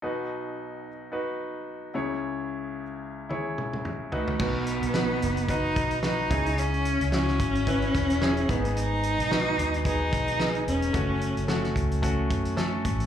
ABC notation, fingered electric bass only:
X:1
M:4/4
L:1/16
Q:"Swing 16ths" 1/4=110
K:Bmix
V:1 name="Fingered electric bass" clef=bass
z16 | z16 | B,,,3 B,,,3 F,,,4 B,,,4 C,,2- | C,,3 C,,3 G,,,4 E,,,4 G,,,2- |
G,,,3 B,,,3 D,,4 B,,,4 E,,,2 | F,,,3 F,,,3 C,,4 F,,4 A,,,2 |]